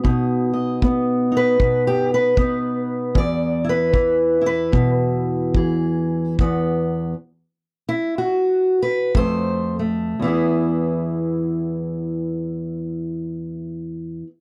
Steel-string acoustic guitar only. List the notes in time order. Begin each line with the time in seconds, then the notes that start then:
Already playing: B3
0.04 B2 D#4
0.53 D#5
0.83 B3
1.32 D#4
1.37 B4
1.60 B2
1.87 G4
2.14 B4
2.38 B3 D#4
3.15 E2 D5
3.64 E4
3.69 B4
3.93 E3
4.41 E4
4.46 B4
4.72 B2
5.56 E3 G#4
6.40 E2 B3
7.89 E4
8.18 F#4
8.82 B4
9.15 F2 A3 C5
9.79 A3
10.19 E2 E3
10.24 B3 E4 G#4